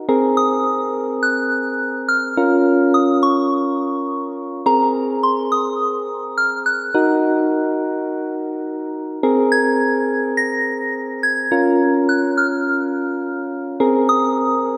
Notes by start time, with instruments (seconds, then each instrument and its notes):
0.09 synth keys C4 G#4 A#4
0.37 synth bell D#6
1.23 synth bell F#6
2.09 synth bell F6
2.37 synth keys C#4 F4 A#4
2.94 synth bell D#6
3.23 synth bell C#6
4.66 synth keys C4 G#4 A#4, synth bell A#5
5.23 synth bell C6
5.52 synth bell D#6
6.38 synth bell F6
6.66 synth bell F#6
6.94 synth keys D#4 F#4 A#4
9.23 synth keys C4 G#4 A#4
9.52 synth bell G#6
10.37 synth bell A#6
11.23 synth bell G#6
11.52 synth keys C#4 F4 A#4
12.09 synth bell F#6
12.38 synth bell F6
13.80 synth keys C4 G#4 A#4
14.09 synth bell D#6